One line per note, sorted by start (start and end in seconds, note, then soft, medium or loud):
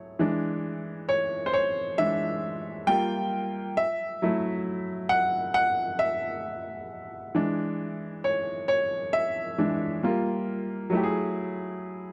0.00 0.20 F#3 soft
0.00 0.20 A3 soft
0.00 0.20 E4 soft
0.00 0.20 C#5 medium
0.19 1.49 E3 medium
0.19 1.49 G#3 soft
0.19 1.49 D4 medium
1.09 1.17 C#5 medium
1.46 1.52 C5 medium
1.53 1.99 C#5 medium
1.98 2.38 E3 soft
1.98 2.39 G#3 soft
1.98 2.39 D4 medium
1.98 2.90 E5 loud
2.87 3.72 G3 medium
2.87 3.73 A#3 medium
2.87 3.73 F4 medium
2.87 3.79 G5 loud
3.77 5.15 E5 medium
4.22 4.84 F#3 medium
4.22 4.84 A3 medium
4.22 4.85 E4 medium
5.09 5.53 F#5 medium
5.54 6.01 F#5 medium
5.99 6.85 E5 medium
7.35 8.65 E3 medium
7.35 8.65 G#3 soft
7.35 8.65 D4 medium
8.24 8.66 C#5 medium
8.68 9.14 C#5 medium
9.13 9.99 E5 medium
9.58 9.99 E3 soft
9.58 9.99 G#3 soft
9.58 9.99 D4 medium
10.03 10.66 G3 medium
10.03 10.66 A#3 medium
10.03 10.66 F4 medium
10.90 12.12 F#3 medium
10.90 12.12 A3 medium
10.94 12.12 E4 medium
10.94 11.02 G4 medium
11.03 12.12 G#4 medium